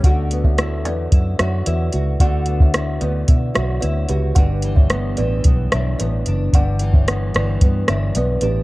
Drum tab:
HH |x-x-x-x-x-x-x-x-|x-x-x-x-x-x-x-x-|x-x-x-x-x-x-x-x-|x-x-x-x-x-x-x-x-|
SD |----r-----r-----|----r-----r-----|----r-----r-----|----r-r---r-----|
BD |o--o----o-------|o--o----o-------|o--o----o-------|o--o----o-------|